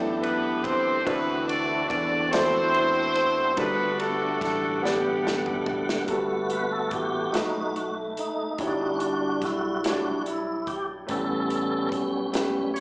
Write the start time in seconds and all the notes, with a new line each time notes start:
Already playing: F#2 B2 E3 A3 B3 D4 E4 G4 A4 D5
0.21 B3 B4, ride
0.64 C4 C5, kick, ride
1.05 D2 D3 E3 A3 B3 C4 D4 E4 F#4 A4 B4 D5, kick, ride
1.47 D4 D5, ride
1.88 E2 D4 D5, kick, ride
2.30 C4 E4 F#4 A4 C5 D5, ride
2.34 snare
2.74 ride
3.15 ride
3.56 G1 G2 D3 G3 A3 A#3 B3 D4 F#4 A4 B4 D5 F#5, kick, ride
3.63 B3
3.99 A3 A4, ride
4.41 A1 A3 A4, kick, snare, ride
4.82 G3 B3 D4 G4 A4 D5 F#5, snare
5.27 snare
5.46 mid tom
5.66 floor tom
5.89 snare
6.06 G1 G2 G3 A3 A#3 B3 F#4 A4, kick, closed hi-hat
6.14 B3
6.50 B4, closed hi-hat
6.72 A4
6.91 A1 G4, kick, closed hi-hat
7.31 B1 B2 A3 D#4 F#4, closed hi-hat
7.35 B4, snare
7.76 F#4, closed hi-hat
8.17 D#4, closed hi-hat
8.58 G1 G2 G3 D4 E4 F#4 C#5, kick, closed hi-hat
8.68 D5
8.95 C#4
9.00 D4, closed hi-hat
9.42 B1 E4, kick, snare, closed hi-hat
9.83 G3 D4 E4 F#4 C#5, snare, closed hi-hat
9.93 D5
10.26 E4, closed hi-hat
10.67 G4, kick, closed hi-hat
11.07 A1 A2 G3 A3 C#4 G4 A4 B4, kick, closed hi-hat
11.11 B3 C#4
11.50 closed hi-hat
11.92 B1, kick, closed hi-hat
12.32 G3 A3 B3 C#4 G4, snare, closed hi-hat
12.36 B4
12.74 C#5, closed hi-hat